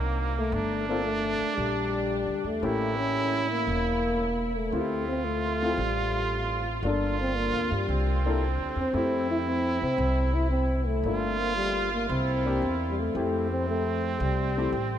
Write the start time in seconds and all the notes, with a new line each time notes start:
Already playing: C2 A#3 C4 D#4 F#4
0.38 A3
0.52 G1 D4
0.89 A#3 C4 D4 F4 A4
1.05 A3
1.41 muted upright bass stroke
1.57 A#1 G3
2.27 D2
2.44 E2 A3
2.62 A1 A#3 C#4 E4 G4
2.96 C#4
3.50 A#3
3.67 E1
4.56 A3
4.72 D2 C4 E4 F4 G4
5.08 C4
5.25 A3
5.62 C4 E4 F4 A4
5.74 A1 F3 G3
6.83 G1 A#3 D4 F4 A4
7.20 C4
7.36 A#3
7.53 D2
7.71 G2 G3
7.88 C2 C4
8.26 A#3 D4 E4 A4
8.58 D2
8.76 E2 C4
8.94 F2 A3 C4 E4 G4
9.31 E4
9.47 C4
9.82 C3 C4
9.98 C2
10.34 E4
10.50 C4
10.87 A3
11.03 G1 A#3 D4 F4 A4
11.39 A#3
11.56 G3
11.93 A#3
12.06 C2 C4 E4 F4
12.45 A#3 D4 E4 G4
12.62 E2
12.90 G3
13.00 A3
13.15 F2 A3 C4 E4 G4
13.50 C4
13.68 A3
14.20 C2 G3
14.57 A3 C4 E4 G4
14.72 A1